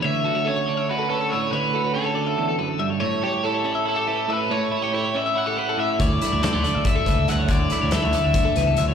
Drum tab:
HH |-------|-------|-------|-------|
SD |-------|-------|-------|-------|
BD |-------|-------|-------|-------|

HH |xxxxxxx|xxxxxxx|
SD |-oo---o|-oo--o-|
BD |o---oo-|o---o--|